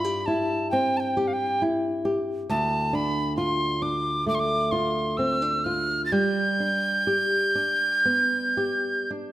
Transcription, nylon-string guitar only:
0.00 2.49 G2 medium
0.00 0.26 E4 medium
0.04 1.16 G4 medium
0.28 1.61 E4 medium
0.73 2.59 C4 medium
1.17 2.04 G4 medium
1.62 2.59 E4 soft
2.05 2.58 G4 medium
2.50 6.12 D2 medium
2.93 3.81 D4 medium
3.38 4.71 F4 medium
3.82 5.18 D4 soft
4.26 6.21 A3 soft
4.72 5.65 F4 medium
5.19 5.42 C4 soft
5.42 6.22 D4 soft
5.66 6.22 F4 soft
6.12 9.32 G3 medium
6.60 7.55 D4 soft
7.07 8.57 G4 soft
7.55 9.10 D4 soft
8.05 9.32 B3 soft
8.57 9.32 G4 medium
9.11 9.32 D4 soft

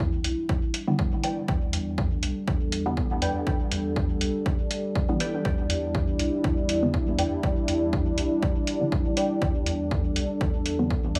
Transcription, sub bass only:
0.00 0.20 E2 medium
0.24 0.34 B1 medium
1.48 1.67 E2 loud
1.73 2.18 E2 medium
2.23 2.33 B1 medium
2.48 3.17 E2 medium
3.22 3.32 E2 medium
3.72 4.16 E2 medium
4.21 4.31 B1 medium
5.45 5.64 E2 loud
5.70 6.15 E2 loud
6.19 6.29 B1 medium
6.44 7.14 E2 medium
7.19 7.28 E2 medium
7.68 8.13 E2 loud
8.18 8.28 B1 medium
9.42 9.60 E2 loud
9.67 10.11 E2 loud
10.16 10.26 B1 medium
10.41 11.10 E2 medium
11.15 11.19 E2 medium

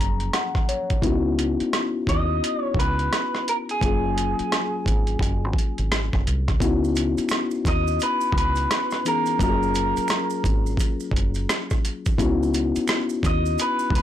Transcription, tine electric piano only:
0.00 1.00 F3 medium
0.00 0.98 F#3 medium
0.00 1.02 A#3 medium
0.00 0.99 C#4 medium
0.00 1.00 G#4 medium
0.00 0.31 A#5 medium
0.34 0.66 F#5 medium
0.69 1.01 C#5 medium
1.02 3.78 B3 medium
1.02 3.78 C#4 medium
1.02 3.79 D#4 medium
1.02 3.77 E4 medium
1.02 3.79 F#4 medium
3.81 6.56 F#3 medium
3.81 6.57 A#3 medium
3.81 6.57 C#4 soft
3.81 6.58 F4 medium
3.81 6.58 G#4 medium
6.60 9.01 B3 medium
6.60 9.01 C#4 medium
6.60 9.02 D#4 medium
6.60 9.01 E4 medium
6.60 9.02 F#4 medium
9.05 9.40 E3 soft
9.05 9.40 B3 soft
9.05 9.40 C#4 soft
9.05 9.40 D#4 soft
9.05 9.41 G#4 soft
9.39 12.14 F#3 medium
9.39 12.15 A#3 medium
9.39 12.15 C#4 medium
9.39 12.16 F4 medium
9.39 9.49 F#4 medium
9.49 12.19 G#4 medium
12.18 14.02 B3 medium
12.18 14.02 C#4 medium
12.18 14.02 D#4 medium
12.18 14.02 E4 medium
12.18 14.02 F#4 medium

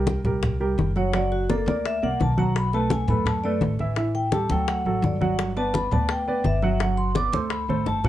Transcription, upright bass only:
0.00 0.19 C2 medium
0.25 0.74 C2 medium
0.78 1.61 F#1 medium
1.66 1.99 D2 medium
2.02 2.19 C2 medium
2.20 3.03 B1 medium
3.08 3.57 F#2 loud
3.61 4.44 A1 medium
4.50 4.83 D2 medium
4.85 5.02 A1 medium
5.02 5.85 G1 loud
5.91 6.41 D2 medium
6.44 7.27 G1 loud
7.32 7.65 D2 loud
7.68 7.85 A1 medium
7.86 8.09 G1 medium

